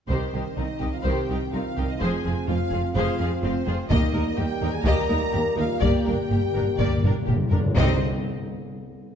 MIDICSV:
0, 0, Header, 1, 10, 480
1, 0, Start_track
1, 0, Key_signature, -3, "minor"
1, 0, Tempo, 476569
1, 95, Time_signature, 4, 2, 24, 8
1, 5373, Tempo, 485044
1, 9150, End_track
2, 0, Start_track
2, 0, Title_t, "Violin section"
2, 0, Program_c, 0, 48
2, 104, Note_on_c, 0, 72, 41
2, 552, Note_off_c, 0, 72, 0
2, 580, Note_on_c, 0, 75, 47
2, 941, Note_on_c, 0, 77, 41
2, 944, Note_off_c, 0, 75, 0
2, 1059, Note_on_c, 0, 79, 47
2, 1063, Note_off_c, 0, 77, 0
2, 1533, Note_on_c, 0, 77, 49
2, 1545, Note_off_c, 0, 79, 0
2, 1895, Note_off_c, 0, 77, 0
2, 1908, Note_on_c, 0, 75, 47
2, 2016, Note_on_c, 0, 80, 54
2, 2029, Note_off_c, 0, 75, 0
2, 2501, Note_off_c, 0, 80, 0
2, 2512, Note_on_c, 0, 77, 56
2, 2948, Note_off_c, 0, 77, 0
2, 2960, Note_on_c, 0, 77, 57
2, 3441, Note_off_c, 0, 77, 0
2, 3448, Note_on_c, 0, 72, 57
2, 3922, Note_off_c, 0, 72, 0
2, 3924, Note_on_c, 0, 75, 66
2, 4398, Note_off_c, 0, 75, 0
2, 4405, Note_on_c, 0, 79, 71
2, 4764, Note_on_c, 0, 80, 65
2, 4768, Note_off_c, 0, 79, 0
2, 4888, Note_off_c, 0, 80, 0
2, 4894, Note_on_c, 0, 82, 77
2, 5614, Note_off_c, 0, 82, 0
2, 5621, Note_on_c, 0, 77, 60
2, 5852, Note_on_c, 0, 79, 55
2, 5853, Note_off_c, 0, 77, 0
2, 7301, Note_off_c, 0, 79, 0
2, 7791, Note_on_c, 0, 72, 75
2, 8054, Note_off_c, 0, 72, 0
2, 9150, End_track
3, 0, Start_track
3, 0, Title_t, "Violin section"
3, 0, Program_c, 1, 48
3, 95, Note_on_c, 1, 72, 37
3, 321, Note_off_c, 1, 72, 0
3, 336, Note_on_c, 1, 67, 31
3, 417, Note_off_c, 1, 67, 0
3, 584, Note_on_c, 1, 63, 26
3, 665, Note_off_c, 1, 63, 0
3, 802, Note_on_c, 1, 67, 30
3, 883, Note_off_c, 1, 67, 0
3, 1054, Note_on_c, 1, 72, 41
3, 1284, Note_off_c, 1, 72, 0
3, 1305, Note_on_c, 1, 67, 36
3, 1385, Note_off_c, 1, 67, 0
3, 1537, Note_on_c, 1, 63, 33
3, 1617, Note_off_c, 1, 63, 0
3, 1786, Note_on_c, 1, 67, 37
3, 1867, Note_off_c, 1, 67, 0
3, 2022, Note_on_c, 1, 72, 49
3, 2248, Note_off_c, 1, 72, 0
3, 2261, Note_on_c, 1, 68, 37
3, 2342, Note_off_c, 1, 68, 0
3, 2497, Note_on_c, 1, 65, 35
3, 2578, Note_off_c, 1, 65, 0
3, 2729, Note_on_c, 1, 68, 40
3, 2809, Note_off_c, 1, 68, 0
3, 2981, Note_on_c, 1, 72, 56
3, 3206, Note_off_c, 1, 72, 0
3, 3233, Note_on_c, 1, 68, 45
3, 3313, Note_off_c, 1, 68, 0
3, 3472, Note_on_c, 1, 65, 44
3, 3552, Note_off_c, 1, 65, 0
3, 3689, Note_on_c, 1, 68, 46
3, 3770, Note_off_c, 1, 68, 0
3, 3929, Note_on_c, 1, 75, 61
3, 4155, Note_off_c, 1, 75, 0
3, 4158, Note_on_c, 1, 70, 47
3, 4239, Note_off_c, 1, 70, 0
3, 4400, Note_on_c, 1, 67, 47
3, 4481, Note_off_c, 1, 67, 0
3, 4667, Note_on_c, 1, 70, 48
3, 4747, Note_off_c, 1, 70, 0
3, 4901, Note_on_c, 1, 75, 69
3, 5121, Note_off_c, 1, 75, 0
3, 5126, Note_on_c, 1, 70, 51
3, 5206, Note_off_c, 1, 70, 0
3, 5357, Note_on_c, 1, 67, 46
3, 5436, Note_off_c, 1, 67, 0
3, 5612, Note_on_c, 1, 70, 51
3, 5691, Note_off_c, 1, 70, 0
3, 5849, Note_on_c, 1, 74, 64
3, 6077, Note_off_c, 1, 74, 0
3, 6079, Note_on_c, 1, 70, 40
3, 6158, Note_off_c, 1, 70, 0
3, 6336, Note_on_c, 1, 67, 37
3, 6415, Note_off_c, 1, 67, 0
3, 6580, Note_on_c, 1, 70, 41
3, 6659, Note_off_c, 1, 70, 0
3, 6812, Note_on_c, 1, 74, 52
3, 7040, Note_off_c, 1, 74, 0
3, 7075, Note_on_c, 1, 70, 44
3, 7154, Note_off_c, 1, 70, 0
3, 7287, Note_on_c, 1, 67, 38
3, 7366, Note_off_c, 1, 67, 0
3, 7523, Note_on_c, 1, 70, 50
3, 7602, Note_off_c, 1, 70, 0
3, 7780, Note_on_c, 1, 75, 68
3, 8048, Note_off_c, 1, 75, 0
3, 9150, End_track
4, 0, Start_track
4, 0, Title_t, "French horn section"
4, 0, Program_c, 2, 60
4, 85, Note_on_c, 2, 60, 48
4, 542, Note_off_c, 2, 60, 0
4, 566, Note_on_c, 2, 63, 50
4, 935, Note_on_c, 2, 65, 49
4, 937, Note_off_c, 2, 63, 0
4, 1054, Note_on_c, 2, 67, 51
4, 1061, Note_off_c, 2, 65, 0
4, 1531, Note_on_c, 2, 65, 58
4, 1533, Note_off_c, 2, 67, 0
4, 1891, Note_on_c, 2, 63, 51
4, 1901, Note_off_c, 2, 65, 0
4, 2018, Note_on_c, 2, 68, 61
4, 2021, Note_off_c, 2, 63, 0
4, 2501, Note_on_c, 2, 65, 59
4, 2502, Note_off_c, 2, 68, 0
4, 2955, Note_off_c, 2, 65, 0
4, 2967, Note_on_c, 2, 65, 70
4, 3445, Note_off_c, 2, 65, 0
4, 3455, Note_on_c, 2, 60, 69
4, 3923, Note_on_c, 2, 63, 78
4, 3926, Note_off_c, 2, 60, 0
4, 4397, Note_off_c, 2, 63, 0
4, 4409, Note_on_c, 2, 67, 82
4, 4770, Note_off_c, 2, 67, 0
4, 4775, Note_on_c, 2, 68, 73
4, 4893, Note_on_c, 2, 70, 90
4, 4894, Note_off_c, 2, 68, 0
4, 5599, Note_on_c, 2, 65, 72
4, 5614, Note_off_c, 2, 70, 0
4, 5847, Note_off_c, 2, 65, 0
4, 5853, Note_on_c, 2, 67, 65
4, 7302, Note_off_c, 2, 67, 0
4, 7778, Note_on_c, 2, 72, 87
4, 7980, Note_off_c, 2, 72, 0
4, 9150, End_track
5, 0, Start_track
5, 0, Title_t, "Viola section"
5, 0, Program_c, 3, 48
5, 90, Note_on_c, 3, 67, 40
5, 94, Note_on_c, 3, 51, 43
5, 319, Note_off_c, 3, 67, 0
5, 321, Note_off_c, 3, 51, 0
5, 333, Note_on_c, 3, 51, 28
5, 337, Note_on_c, 3, 63, 27
5, 414, Note_off_c, 3, 51, 0
5, 418, Note_off_c, 3, 63, 0
5, 588, Note_on_c, 3, 60, 35
5, 594, Note_on_c, 3, 51, 31
5, 668, Note_off_c, 3, 60, 0
5, 675, Note_off_c, 3, 51, 0
5, 816, Note_on_c, 3, 51, 31
5, 819, Note_on_c, 3, 63, 30
5, 897, Note_off_c, 3, 51, 0
5, 900, Note_off_c, 3, 63, 0
5, 1065, Note_on_c, 3, 67, 43
5, 1066, Note_on_c, 3, 51, 45
5, 1290, Note_off_c, 3, 67, 0
5, 1291, Note_off_c, 3, 51, 0
5, 1305, Note_on_c, 3, 51, 40
5, 1307, Note_on_c, 3, 63, 37
5, 1385, Note_off_c, 3, 51, 0
5, 1387, Note_off_c, 3, 63, 0
5, 1555, Note_on_c, 3, 51, 35
5, 1555, Note_on_c, 3, 60, 36
5, 1635, Note_off_c, 3, 51, 0
5, 1635, Note_off_c, 3, 60, 0
5, 1793, Note_on_c, 3, 51, 35
5, 1795, Note_on_c, 3, 63, 43
5, 1874, Note_off_c, 3, 51, 0
5, 1875, Note_off_c, 3, 63, 0
5, 2030, Note_on_c, 3, 53, 44
5, 2035, Note_on_c, 3, 68, 44
5, 2252, Note_off_c, 3, 53, 0
5, 2255, Note_off_c, 3, 68, 0
5, 2266, Note_on_c, 3, 65, 37
5, 2267, Note_on_c, 3, 53, 35
5, 2347, Note_off_c, 3, 53, 0
5, 2347, Note_off_c, 3, 65, 0
5, 2501, Note_on_c, 3, 53, 43
5, 2510, Note_on_c, 3, 60, 38
5, 2582, Note_off_c, 3, 53, 0
5, 2590, Note_off_c, 3, 60, 0
5, 2749, Note_on_c, 3, 65, 37
5, 2757, Note_on_c, 3, 53, 38
5, 2829, Note_off_c, 3, 65, 0
5, 2837, Note_off_c, 3, 53, 0
5, 2983, Note_on_c, 3, 53, 58
5, 2983, Note_on_c, 3, 68, 55
5, 3202, Note_off_c, 3, 53, 0
5, 3207, Note_off_c, 3, 68, 0
5, 3215, Note_on_c, 3, 53, 41
5, 3223, Note_on_c, 3, 65, 44
5, 3295, Note_off_c, 3, 53, 0
5, 3303, Note_off_c, 3, 65, 0
5, 3462, Note_on_c, 3, 60, 47
5, 3463, Note_on_c, 3, 53, 49
5, 3542, Note_off_c, 3, 60, 0
5, 3544, Note_off_c, 3, 53, 0
5, 3703, Note_on_c, 3, 65, 56
5, 3707, Note_on_c, 3, 53, 49
5, 3784, Note_off_c, 3, 65, 0
5, 3787, Note_off_c, 3, 53, 0
5, 3930, Note_on_c, 3, 58, 61
5, 3930, Note_on_c, 3, 67, 61
5, 4152, Note_off_c, 3, 58, 0
5, 4156, Note_off_c, 3, 67, 0
5, 4164, Note_on_c, 3, 58, 47
5, 4168, Note_on_c, 3, 63, 45
5, 4245, Note_off_c, 3, 58, 0
5, 4248, Note_off_c, 3, 63, 0
5, 4417, Note_on_c, 3, 58, 48
5, 4420, Note_off_c, 3, 58, 0
5, 4420, Note_on_c, 3, 58, 49
5, 4500, Note_off_c, 3, 58, 0
5, 4648, Note_on_c, 3, 58, 49
5, 4655, Note_on_c, 3, 63, 49
5, 4728, Note_off_c, 3, 58, 0
5, 4736, Note_off_c, 3, 63, 0
5, 4881, Note_on_c, 3, 58, 66
5, 4884, Note_on_c, 3, 67, 69
5, 5110, Note_off_c, 3, 58, 0
5, 5112, Note_off_c, 3, 67, 0
5, 5134, Note_on_c, 3, 63, 51
5, 5137, Note_on_c, 3, 58, 50
5, 5214, Note_off_c, 3, 63, 0
5, 5217, Note_off_c, 3, 58, 0
5, 5379, Note_on_c, 3, 58, 52
5, 5386, Note_off_c, 3, 58, 0
5, 5386, Note_on_c, 3, 58, 52
5, 5465, Note_off_c, 3, 58, 0
5, 5601, Note_on_c, 3, 63, 52
5, 5604, Note_on_c, 3, 58, 52
5, 5681, Note_off_c, 3, 63, 0
5, 5683, Note_off_c, 3, 58, 0
5, 5847, Note_on_c, 3, 58, 59
5, 5850, Note_on_c, 3, 67, 55
5, 6076, Note_off_c, 3, 58, 0
5, 6077, Note_off_c, 3, 67, 0
5, 6093, Note_on_c, 3, 62, 34
5, 6095, Note_on_c, 3, 58, 39
5, 6172, Note_off_c, 3, 62, 0
5, 6174, Note_off_c, 3, 58, 0
5, 6339, Note_on_c, 3, 58, 43
5, 6340, Note_off_c, 3, 58, 0
5, 6340, Note_on_c, 3, 58, 42
5, 6419, Note_off_c, 3, 58, 0
5, 6582, Note_on_c, 3, 62, 40
5, 6583, Note_on_c, 3, 58, 38
5, 6662, Note_off_c, 3, 62, 0
5, 6663, Note_off_c, 3, 58, 0
5, 6812, Note_on_c, 3, 67, 49
5, 6816, Note_on_c, 3, 58, 59
5, 7040, Note_off_c, 3, 67, 0
5, 7042, Note_off_c, 3, 58, 0
5, 7059, Note_on_c, 3, 62, 46
5, 7062, Note_on_c, 3, 58, 41
5, 7139, Note_off_c, 3, 62, 0
5, 7141, Note_off_c, 3, 58, 0
5, 7292, Note_on_c, 3, 58, 44
5, 7297, Note_off_c, 3, 58, 0
5, 7297, Note_on_c, 3, 58, 41
5, 7377, Note_off_c, 3, 58, 0
5, 7538, Note_on_c, 3, 58, 47
5, 7539, Note_on_c, 3, 62, 45
5, 7617, Note_off_c, 3, 58, 0
5, 7619, Note_off_c, 3, 62, 0
5, 7785, Note_on_c, 3, 60, 69
5, 7787, Note_on_c, 3, 67, 62
5, 8051, Note_off_c, 3, 60, 0
5, 8052, Note_off_c, 3, 67, 0
5, 9150, End_track
6, 0, Start_track
6, 0, Title_t, "Trombone section"
6, 0, Program_c, 4, 61
6, 83, Note_on_c, 4, 51, 38
6, 83, Note_on_c, 4, 60, 41
6, 1984, Note_off_c, 4, 51, 0
6, 2030, Note_on_c, 4, 53, 45
6, 3894, Note_off_c, 4, 60, 0
6, 3902, Note_off_c, 4, 53, 0
6, 3939, Note_on_c, 4, 55, 61
6, 3939, Note_on_c, 4, 58, 64
6, 7504, Note_off_c, 4, 55, 0
6, 7504, Note_off_c, 4, 58, 0
6, 7789, Note_on_c, 4, 55, 68
6, 7799, Note_on_c, 4, 63, 67
6, 7987, Note_off_c, 4, 55, 0
6, 7994, Note_off_c, 4, 63, 0
6, 9150, End_track
7, 0, Start_track
7, 0, Title_t, "Timpani"
7, 0, Program_c, 5, 47
7, 93, Note_on_c, 5, 48, 45
7, 783, Note_off_c, 5, 48, 0
7, 6008, Note_on_c, 5, 43, 30
7, 6070, Note_off_c, 5, 43, 0
7, 6082, Note_on_c, 5, 43, 31
7, 6144, Note_off_c, 5, 43, 0
7, 6156, Note_on_c, 5, 43, 34
7, 6219, Note_off_c, 5, 43, 0
7, 6231, Note_on_c, 5, 43, 33
7, 6292, Note_off_c, 5, 43, 0
7, 6304, Note_on_c, 5, 43, 35
7, 6370, Note_off_c, 5, 43, 0
7, 6382, Note_on_c, 5, 43, 38
7, 6451, Note_off_c, 5, 43, 0
7, 6463, Note_on_c, 5, 43, 39
7, 6525, Note_off_c, 5, 43, 0
7, 6537, Note_on_c, 5, 43, 40
7, 6607, Note_off_c, 5, 43, 0
7, 6621, Note_on_c, 5, 43, 45
7, 6682, Note_off_c, 5, 43, 0
7, 6694, Note_on_c, 5, 43, 47
7, 6755, Note_off_c, 5, 43, 0
7, 6766, Note_on_c, 5, 43, 44
7, 6830, Note_off_c, 5, 43, 0
7, 6842, Note_on_c, 5, 43, 51
7, 6902, Note_off_c, 5, 43, 0
7, 6914, Note_on_c, 5, 43, 50
7, 6983, Note_off_c, 5, 43, 0
7, 6995, Note_on_c, 5, 43, 54
7, 7061, Note_off_c, 5, 43, 0
7, 7078, Note_on_c, 5, 43, 55
7, 7140, Note_off_c, 5, 43, 0
7, 7152, Note_on_c, 5, 43, 59
7, 7215, Note_off_c, 5, 43, 0
7, 7226, Note_on_c, 5, 43, 68
7, 7285, Note_off_c, 5, 43, 0
7, 7297, Note_on_c, 5, 43, 71
7, 7360, Note_off_c, 5, 43, 0
7, 7372, Note_on_c, 5, 43, 69
7, 7438, Note_off_c, 5, 43, 0
7, 7449, Note_on_c, 5, 43, 67
7, 7507, Note_off_c, 5, 43, 0
7, 7519, Note_on_c, 5, 43, 77
7, 7585, Note_off_c, 5, 43, 0
7, 7597, Note_on_c, 5, 43, 85
7, 7661, Note_off_c, 5, 43, 0
7, 7673, Note_on_c, 5, 43, 85
7, 7739, Note_off_c, 5, 43, 0
7, 7800, Note_on_c, 5, 48, 82
7, 8015, Note_off_c, 5, 48, 0
7, 9150, End_track
8, 0, Start_track
8, 0, Title_t, "Cello section"
8, 0, Program_c, 6, 48
8, 89, Note_on_c, 6, 36, 40
8, 169, Note_off_c, 6, 36, 0
8, 336, Note_on_c, 6, 36, 32
8, 416, Note_off_c, 6, 36, 0
8, 572, Note_on_c, 6, 36, 32
8, 653, Note_off_c, 6, 36, 0
8, 817, Note_on_c, 6, 36, 31
8, 898, Note_off_c, 6, 36, 0
8, 1058, Note_on_c, 6, 36, 43
8, 1139, Note_off_c, 6, 36, 0
8, 1306, Note_on_c, 6, 36, 35
8, 1387, Note_off_c, 6, 36, 0
8, 1548, Note_on_c, 6, 36, 34
8, 1629, Note_off_c, 6, 36, 0
8, 1792, Note_on_c, 6, 36, 37
8, 1872, Note_off_c, 6, 36, 0
8, 2029, Note_on_c, 6, 41, 53
8, 2110, Note_off_c, 6, 41, 0
8, 2271, Note_on_c, 6, 41, 38
8, 2352, Note_off_c, 6, 41, 0
8, 2498, Note_on_c, 6, 41, 41
8, 2579, Note_off_c, 6, 41, 0
8, 2741, Note_on_c, 6, 41, 40
8, 2821, Note_off_c, 6, 41, 0
8, 2974, Note_on_c, 6, 41, 57
8, 3054, Note_off_c, 6, 41, 0
8, 3217, Note_on_c, 6, 41, 43
8, 3297, Note_off_c, 6, 41, 0
8, 3455, Note_on_c, 6, 41, 45
8, 3536, Note_off_c, 6, 41, 0
8, 3691, Note_on_c, 6, 41, 46
8, 3772, Note_off_c, 6, 41, 0
8, 3932, Note_on_c, 6, 39, 66
8, 4012, Note_off_c, 6, 39, 0
8, 4170, Note_on_c, 6, 39, 48
8, 4251, Note_off_c, 6, 39, 0
8, 4410, Note_on_c, 6, 39, 50
8, 4490, Note_off_c, 6, 39, 0
8, 4648, Note_on_c, 6, 39, 47
8, 4728, Note_off_c, 6, 39, 0
8, 4885, Note_on_c, 6, 39, 66
8, 4966, Note_off_c, 6, 39, 0
8, 5130, Note_on_c, 6, 39, 49
8, 5211, Note_off_c, 6, 39, 0
8, 5373, Note_on_c, 6, 39, 45
8, 5452, Note_off_c, 6, 39, 0
8, 5605, Note_on_c, 6, 39, 47
8, 5684, Note_off_c, 6, 39, 0
8, 5846, Note_on_c, 6, 43, 54
8, 5925, Note_off_c, 6, 43, 0
8, 6089, Note_on_c, 6, 43, 41
8, 6169, Note_off_c, 6, 43, 0
8, 6330, Note_on_c, 6, 43, 40
8, 6409, Note_off_c, 6, 43, 0
8, 6572, Note_on_c, 6, 43, 41
8, 6651, Note_off_c, 6, 43, 0
8, 6813, Note_on_c, 6, 43, 54
8, 6892, Note_off_c, 6, 43, 0
8, 7055, Note_on_c, 6, 43, 43
8, 7134, Note_off_c, 6, 43, 0
8, 7296, Note_on_c, 6, 43, 38
8, 7376, Note_off_c, 6, 43, 0
8, 7535, Note_on_c, 6, 43, 41
8, 7614, Note_off_c, 6, 43, 0
8, 7778, Note_on_c, 6, 48, 76
8, 8048, Note_off_c, 6, 48, 0
8, 9150, End_track
9, 0, Start_track
9, 0, Title_t, "Double bass section"
9, 0, Program_c, 7, 48
9, 89, Note_on_c, 7, 36, 43
9, 170, Note_off_c, 7, 36, 0
9, 336, Note_on_c, 7, 36, 31
9, 417, Note_off_c, 7, 36, 0
9, 581, Note_on_c, 7, 36, 30
9, 662, Note_off_c, 7, 36, 0
9, 815, Note_on_c, 7, 36, 32
9, 896, Note_off_c, 7, 36, 0
9, 1057, Note_on_c, 7, 36, 46
9, 1137, Note_off_c, 7, 36, 0
9, 1309, Note_on_c, 7, 36, 33
9, 1389, Note_off_c, 7, 36, 0
9, 1550, Note_on_c, 7, 36, 33
9, 1631, Note_off_c, 7, 36, 0
9, 1797, Note_on_c, 7, 36, 33
9, 1877, Note_off_c, 7, 36, 0
9, 2030, Note_on_c, 7, 29, 48
9, 2110, Note_off_c, 7, 29, 0
9, 2275, Note_on_c, 7, 29, 40
9, 2355, Note_off_c, 7, 29, 0
9, 2508, Note_on_c, 7, 29, 37
9, 2589, Note_off_c, 7, 29, 0
9, 2733, Note_on_c, 7, 29, 43
9, 2814, Note_off_c, 7, 29, 0
9, 2980, Note_on_c, 7, 29, 60
9, 3061, Note_off_c, 7, 29, 0
9, 3225, Note_on_c, 7, 29, 41
9, 3306, Note_off_c, 7, 29, 0
9, 3459, Note_on_c, 7, 29, 45
9, 3539, Note_off_c, 7, 29, 0
9, 3700, Note_on_c, 7, 29, 43
9, 3780, Note_off_c, 7, 29, 0
9, 3934, Note_on_c, 7, 39, 64
9, 4015, Note_off_c, 7, 39, 0
9, 4173, Note_on_c, 7, 39, 51
9, 4254, Note_off_c, 7, 39, 0
9, 4415, Note_on_c, 7, 39, 46
9, 4496, Note_off_c, 7, 39, 0
9, 4645, Note_on_c, 7, 39, 52
9, 4725, Note_off_c, 7, 39, 0
9, 4882, Note_on_c, 7, 39, 69
9, 4963, Note_off_c, 7, 39, 0
9, 5129, Note_on_c, 7, 39, 45
9, 5210, Note_off_c, 7, 39, 0
9, 5378, Note_on_c, 7, 39, 48
9, 5457, Note_off_c, 7, 39, 0
9, 5615, Note_on_c, 7, 39, 43
9, 5695, Note_off_c, 7, 39, 0
9, 5849, Note_on_c, 7, 31, 54
9, 5928, Note_off_c, 7, 31, 0
9, 6098, Note_on_c, 7, 31, 41
9, 6177, Note_off_c, 7, 31, 0
9, 6339, Note_on_c, 7, 31, 39
9, 6418, Note_off_c, 7, 31, 0
9, 6579, Note_on_c, 7, 31, 40
9, 6658, Note_off_c, 7, 31, 0
9, 6821, Note_on_c, 7, 31, 56
9, 6900, Note_off_c, 7, 31, 0
9, 7063, Note_on_c, 7, 31, 39
9, 7142, Note_off_c, 7, 31, 0
9, 7294, Note_on_c, 7, 31, 41
9, 7373, Note_off_c, 7, 31, 0
9, 7543, Note_on_c, 7, 31, 37
9, 7623, Note_off_c, 7, 31, 0
9, 7780, Note_on_c, 7, 36, 73
9, 8049, Note_off_c, 7, 36, 0
9, 9150, End_track
10, 0, Start_track
10, 0, Title_t, "Taiko and cinematic ensemble drums"
10, 90, Note_on_c, 9, 41, 43
10, 191, Note_off_c, 9, 41, 0
10, 819, Note_on_c, 9, 41, 26
10, 920, Note_off_c, 9, 41, 0
10, 3937, Note_on_c, 9, 41, 87
10, 4038, Note_off_c, 9, 41, 0
10, 4886, Note_on_c, 9, 41, 67
10, 4987, Note_off_c, 9, 41, 0
10, 5851, Note_on_c, 9, 41, 82
10, 5950, Note_off_c, 9, 41, 0
10, 6815, Note_on_c, 9, 41, 69
10, 6914, Note_off_c, 9, 41, 0
10, 7058, Note_on_c, 9, 45, 73
10, 7157, Note_off_c, 9, 45, 0
10, 7300, Note_on_c, 9, 45, 80
10, 7399, Note_off_c, 9, 45, 0
10, 7538, Note_on_c, 9, 43, 84
10, 7637, Note_off_c, 9, 43, 0
10, 7780, Note_on_c, 9, 43, 77
10, 7879, Note_off_c, 9, 43, 0
10, 9150, End_track
0, 0, End_of_file